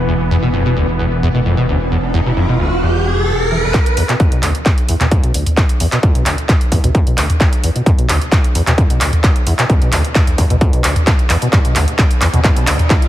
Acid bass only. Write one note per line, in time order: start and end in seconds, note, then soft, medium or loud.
0.08 0.14 E2 medium
0.30 0.37 E2 loud
0.43 0.49 B2 medium
0.54 0.64 F2 medium
0.66 0.75 B2 medium
0.77 0.86 D2 medium
0.99 1.06 E2 medium
1.22 1.29 E2 loud
1.34 1.40 B2 medium
1.45 1.55 F2 medium
1.57 1.66 B2 medium
1.68 1.78 D2 medium
1.91 1.98 E2 medium
2.14 2.20 E2 loud
2.26 2.32 B2 medium
2.37 2.47 F2 medium
2.49 2.58 B2 medium
2.60 2.70 D2 medium
2.82 3.07 E2 medium
3.05 3.19 F2 medium
3.17 3.30 E2 medium
3.28 3.32 A2 loud
3.51 3.58 E3 medium
3.63 3.69 E1 medium
3.74 3.81 E2 medium
3.97 4.04 E2 loud
4.09 4.15 B2 medium
4.20 4.30 F2 medium
4.32 4.41 B2 medium
4.43 4.53 D2 medium
4.66 4.72 E2 medium
4.89 4.95 E2 loud
5.00 5.07 B2 medium
5.11 5.21 F2 medium
5.23 5.32 B2 medium
5.34 5.44 D2 medium
5.57 5.64 E2 medium
5.80 5.87 E2 loud
5.92 5.98 B2 medium
6.03 6.13 F2 medium
6.15 6.24 B2 medium
6.26 6.36 D2 medium
6.49 6.56 E2 medium
6.72 6.78 E2 loud
6.84 6.90 B2 medium
6.95 7.05 F2 medium
7.07 7.16 B2 medium
7.18 7.28 D2 medium
7.40 7.47 E2 medium
7.63 7.70 E2 loud
7.75 7.81 B2 medium
7.86 7.96 F2 medium
7.98 8.07 B2 medium
8.09 8.19 D2 medium
8.32 8.39 E2 medium
8.55 8.62 E2 loud
8.67 8.73 B2 medium
8.78 8.88 F2 medium
8.90 8.99 B2 medium
9.01 9.11 D2 medium
9.24 9.30 E2 medium
9.47 9.53 E2 loud
9.59 9.65 B2 medium
9.70 9.79 F2 medium
9.82 9.91 B2 medium
9.93 10.02 D2 medium
10.15 10.22 E2 medium
10.38 10.45 E2 loud
10.50 10.56 B2 medium
10.61 10.71 F2 medium
10.73 10.82 B2 medium
10.84 10.94 D2 medium
11.07 11.14 E2 medium
11.30 11.37 E2 loud
11.42 11.48 B2 medium
11.53 11.59 G2 loud
11.65 11.74 B2 medium
11.76 11.86 D2 medium
11.99 12.05 E2 medium
12.21 12.28 E2 loud
12.34 12.39 B2 medium
12.44 12.51 G2 loud
12.56 12.65 B2 medium
12.67 12.77 D2 medium
12.90 12.97 E2 medium